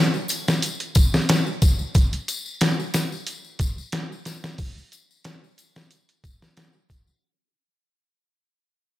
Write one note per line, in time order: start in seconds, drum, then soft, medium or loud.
0.14 tambourine soft
0.28 closed hi-hat medium
0.28 tambourine medium
0.28 triangle medium
0.48 snare soft
0.48 tambourine soft
0.62 closed hi-hat medium
0.62 tambourine medium
0.80 closed hi-hat soft
0.80 tambourine soft
0.95 kick medium
0.95 closed hi-hat medium
0.95 tambourine medium
1.14 snare soft
1.14 tambourine soft
1.29 snare loud
1.29 closed hi-hat medium
1.29 tambourine soft
1.47 tambourine soft
1.62 kick medium
1.62 closed hi-hat medium
1.62 tambourine medium
1.79 tambourine soft
1.95 kick loud
1.95 closed hi-hat medium
1.95 tambourine medium
2.13 closed hi-hat soft
2.13 tambourine soft
2.28 closed hi-hat medium
2.28 tambourine medium
2.46 tambourine soft
2.61 snare loud
2.61 closed hi-hat medium
2.61 tambourine soft
2.80 tambourine soft
2.94 snare soft
2.94 closed hi-hat medium
2.94 tambourine medium
2.94 triangle medium
3.12 tambourine soft
3.27 closed hi-hat medium
3.27 tambourine soft
3.44 tambourine soft
3.59 kick medium
3.59 closed hi-hat medium
3.59 tambourine medium
3.78 tambourine soft
3.92 snare loud
3.92 closed hi-hat medium
3.92 tambourine medium
4.12 tambourine soft
4.25 snare soft
4.25 closed hi-hat medium
4.25 tambourine medium
4.44 snare soft
4.44 tambourine soft
4.58 kick loud
4.58 open hi-hat medium
4.58 tambourine medium
4.78 tambourine soft
4.92 closed hi-hat medium
4.92 tambourine medium
5.11 tambourine soft
5.24 snare loud
5.24 closed hi-hat medium
5.24 tambourine soft
5.44 tambourine soft
5.58 closed hi-hat medium
5.58 tambourine medium
5.58 triangle medium
5.76 snare soft
5.76 tambourine soft
5.91 closed hi-hat medium
5.91 tambourine soft
6.09 closed hi-hat soft
6.09 tambourine soft
6.24 kick medium
6.24 closed hi-hat medium
6.24 tambourine medium
6.42 snare soft
6.42 tambourine soft
6.57 snare loud
6.57 closed hi-hat medium
6.57 tambourine soft
6.73 tambourine soft
6.90 kick medium
6.90 closed hi-hat medium
6.90 tambourine medium
7.07 tambourine soft